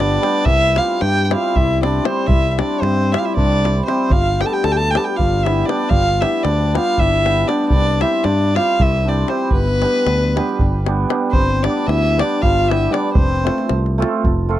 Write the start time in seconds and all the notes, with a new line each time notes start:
Already playing: G1 D4 D5
0.00 G3 B3 D4 G4, davul high
0.22 G3 B3 D4 G4, davul high
0.45 C2 E4 E5, davul low
0.75 G3 C4 E4 F4 G4 F5, davul high
1.00 G2 G4 G5, davul high
1.24 G4 G5
1.31 G3 C4 E4 G4 F5, davul high
1.35 F4
1.55 C2 E4 E5, davul low
1.82 G3 C4 D4 E4 G4 D5, davul high
2.04 G3 C4 E4 G4 C5, davul high
2.27 C2 E4 E5, davul low
2.50 E4 E5
2.59 G3 C4 D4 E4 G4 D5, davul high
2.81 G2 C4 C5, davul high
3.12 G3 C4 E4 G4 E5, davul high
3.19 F4 F5
3.24 E4 E5
3.36 C2 D4 D5, davul low
3.52 davul high
3.63 G3 C4 E4 G4, davul high
3.86 G3 C4 E4 G4 C5, davul high
4.10 G1 F4 F5, davul low
4.40 G3 B3 D4 G4 A4 G5, davul high
4.46 A5
4.51 G4 G5
4.64 D2 A4 A5, davul high
4.68 G4 G5
4.76 A4 A5
4.91 G3 B3 D4 G5
4.95 G4 A5, davul high
5.00 A4
5.05 G4 G5
5.16 G1 F4 F5, davul low
5.43 G3 B3 D4 E4 G4 E5, davul high
5.65 G3 B3 D4 G4 D5, davul high
5.70 D4
5.89 G1 F4 F5, davul low
6.20 G3 B3 D4 E4 G4 E5, davul high
6.43 D2 D4 D5, davul high
6.74 G3 B3 D4 F4 G4 F5, davul high
6.98 G1 E4 E5, davul low
7.25 G3 B3 D4 G4, davul high
7.47 G3 B3 D4 G4 D5, davul high
7.69 C2 D5, davul low
7.74 D4
8.01 G3 C4 E4 G4 E5, davul high
8.24 G2 D4 D5, davul high
8.55 G3 C4 E4 F4 G4 F5, davul high
8.79 C2 E4 E5, davul low
9.05 G3 C4 D4 E4 G4 D5
9.28 G3 C4 E4 G4 C5, davul high
9.51 G1 B3 B4, davul low
9.67 davul high
9.82 G3 B3 D4 G4, davul high
9.96 davul high
10.06 D2, davul high
10.36 G3 B3 D4 G4, davul high
10.49 davul high
10.59 G1, davul low
10.86 G3 B3 D4 G4, davul high
11.09 G3 B3 D4 G4, davul high
11.31 G1 C4 C5, davul low
11.63 G3 B3 D4 G4 D5, davul high
11.77 davul high
11.87 D2 E4 E5, davul high
12.05 davul high
12.17 G3 B3 D4 G4 D5, davul high
12.22 D4
12.42 G1 F4 F5, davul low
12.68 G3 B3 D4 E4 G4 E5, davul high
12.90 G3 B3 D4 G4 D5, davul high
13.14 F1 C4 C5, davul low
13.44 A3 C4 F4 A4, davul high
13.58 davul high
13.69 C2, davul high
13.86 davul high
13.98 A3 C4 F4 A4
14.02 davul high
14.24 F1, davul low
14.49 A3 C4 F4 A4